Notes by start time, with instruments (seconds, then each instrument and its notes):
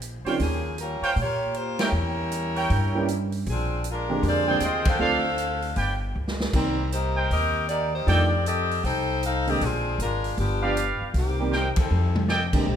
Already playing: upright bass A#1
0.02 closed hi-hat
0.25 grand piano D#3 G3 C4 C#4 F4, trumpet section C5 C#5 F5 G5, muted upright bass stroke, open hi-hat
0.40 upright bass D#2, saxophone section F3 A#3 C#4 G#4, kick, open hi-hat
0.78 saxophone section G3 A#4, closed hi-hat
0.82 saxophone section C#4 F4
1.02 trumpet section C5 C#5 F5 G5, muted upright bass stroke, open hi-hat
1.16 upright bass A#2, kick, open hi-hat
1.22 saxophone section A#3 F4 G4 C#5
1.54 saxophone section A#3 F4 G4 C5, closed hi-hat
1.79 saxophone section E4, trumpet section A#4 C#5 E5 G5, snare, ride
1.83 saxophone section G3 C#4 A#4
1.92 upright bass E2
2.32 closed hi-hat
2.55 trumpet section A#4 C#5 E5 G5, open hi-hat
2.70 upright bass G2, kick, open hi-hat
2.95 grand piano E3 G3 A#3 C#4 G4
3.08 closed hi-hat
3.32 open hi-hat
3.46 upright bass A#1, saxophone section F3 C4 D4 G#4, kick, open hi-hat
3.84 closed hi-hat
3.91 saxophone section G#3 D4 F4 A#4
4.09 grand piano D3 G#3 A#3 C4 G4
4.23 upright bass F2, kick, open hi-hat
4.28 saxophone section C4 F4 G#4 D5
4.47 grand piano D3 G#3 A#3 C4 G4, trumpet section G#4 C5 D5 G5
4.60 upright bass D#2, saxophone section C4, closed hi-hat
4.64 saxophone section F4 G#4 D#5
4.85 saxophone section D4 A4 C5, kick, ride
4.90 saxophone section F5
4.99 upright bass D2, grand piano F3 A3 C4 D4 A4, trumpet section A4 C5 D5 F5
5.38 closed hi-hat
5.62 open hi-hat
5.76 upright bass G1, trumpet section G4 B4 D5 G5, kick, open hi-hat
6.15 upright bass C#2
6.28 snare
6.40 snare
6.53 upright bass C2, grand piano D#3 G3 A#3 C4 G4, saxophone section G3 C4 D#4 A#4, kick, crash
6.92 saxophone section A#3 D#4 G4 C5, closed hi-hat
7.15 trumpet section A#4 C5 D#5 G5
7.31 upright bass D#2, saxophone section C4 G4 A#4 D#5, kick, open hi-hat
7.69 saxophone section A#3 D#4 G4 D5, closed hi-hat
7.95 saxophone section A#3 D#4 G4 C5
8.07 upright bass F2, grand piano D#3 G3 A3 D4 F4, saxophone section C4 G4 A4 D5, trumpet section A4 D5 D#5 G5, kick, open hi-hat
8.46 saxophone section C4 G4 A4 D#5, closed hi-hat
8.71 open hi-hat
8.84 upright bass C2, saxophone section D#4 A4 C5 G5, kick, open hi-hat
9.23 saxophone section D#4 A4 C5 F5, closed hi-hat
9.47 grand piano D3 G#3 A#3 C4 G4, saxophone section C4 G4 A4 D#5, open hi-hat
9.61 upright bass A#1, saxophone section F3 C4 D4 G#4, kick, open hi-hat
9.98 upright bass G#1, closed hi-hat
10.02 saxophone section G#3 D4 F4 A#4
10.24 open hi-hat
10.37 upright bass G1, saxophone section F3 B3 D4 G4, kick, open hi-hat
10.61 grand piano F3 G3 B3 D4 G4, trumpet section G4 B4 D5 F5
10.77 closed hi-hat
11.01 muted upright bass stroke
11.14 upright bass C2, saxophone section D#3 A#3 C4 G4, kick, open hi-hat
11.39 grand piano D#3 G3 A#3 C4 G4
11.52 trumpet section A#4 C5 D#5 G5, snare
11.76 saxophone section G3 C4 D#4 A4, kick, ride
11.91 upright bass F2
12.16 mid tom
12.28 trumpet section A4 D5 D#5 G5, snare
12.53 upright bass A1, grand piano D3 G#3 A#3 C4 G4, kick, crash
12.65 upright bass A#1, trombone section D3 G#3 C4 G4, kick